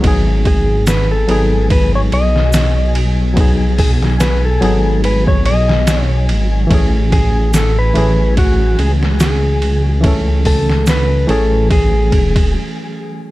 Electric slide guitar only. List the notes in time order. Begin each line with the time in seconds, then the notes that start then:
0.47 G#4
0.88 B4
1.11 A4
1.72 B4
1.95 C#5
2.14 D#5
3.79 G#4
4.20 B4
4.45 A4
5.05 B4
5.28 C#5
5.46 D#5
6.03 C#5
7.13 G#4
7.55 A4
7.79 B4
8.38 F#4
8.80 G#4
9.21 G#4
10.47 A4
10.89 B4
11.30 A4
11.72 G#4